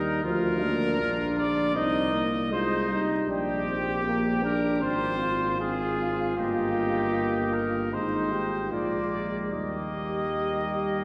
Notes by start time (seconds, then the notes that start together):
Already playing: D#2 G3 D#4 A#4
0.24 D2 F3 F4 A#4
0.60 A#3 D4
0.99 A#1 D4 F4
1.38 D5
1.75 C2 C4 D#4 D#5
2.13 A#3
2.51 G#3 D#4 F4 C5
2.89 G3 D#4
3.28 A#1 D4 G4
3.65 C4
4.04 A#3
4.43 D4 A#4
4.81 G#1 C4 F4 C5
5.19 F4
5.60 C4 F4 G#4
6.37 G1 A#3 D#4 G4
7.53 A#4
7.92 G#1 G#3 D#4 C5
8.31 G4
8.71 A#1 G#3 A#3 F4 D5
9.53 D#2 G3 A#3 G4 D#5
10.35 G3